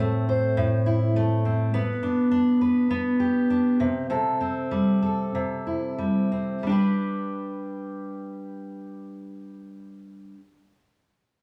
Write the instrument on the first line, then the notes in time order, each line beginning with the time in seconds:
steel-string acoustic guitar
Already playing: A2 C4 C5
0.00 A3
0.29 C5
0.57 A2
0.86 E4
1.16 A3
1.45 C4
1.74 B3 B4
2.03 D4
2.31 D4
2.61 B4
2.91 B3
3.20 G4
3.50 D4
3.80 C3
4.10 C3 A4
4.41 C4
4.71 G3
5.02 A4
5.35 C3
5.67 E4
5.98 G3
6.32 C4
6.63 G3 D4
6.69 G4 B4